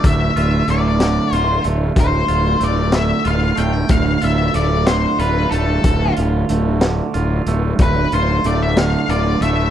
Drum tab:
HH |xxxxxx|xxxxxx|xxxxxx|xxxxxx|
SD |---o--|---o--|---o--|---o--|
BD |o-----|o-----|o-----|o-----|

HH |xxxxxx|
SD |---o--|
BD |o-----|